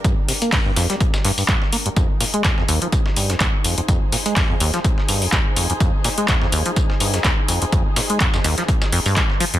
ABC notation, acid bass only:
X:1
M:4/4
L:1/16
Q:"Swing 16ths" 1/4=125
K:Fdor
V:1 name="Acid bass" clef=bass
G,, z C, B, G,, G,, F,, G, z2 G,, G,, G,, z B, G,, | F,, z B,, A, F,, F,, E,, F, z2 G,, F,, E,, z F,, F,, | F,, z B,, A, F,, F,, E,, F, z2 G,, F,, E,, z F,, F,, | F,, z B,, A, F,, F,, E,, F, z2 G,, F,, E,, z F,, F,, |
F,, z B,, A, F,, F,, E,, F, z2 F,, G,, F, z F, F,, |]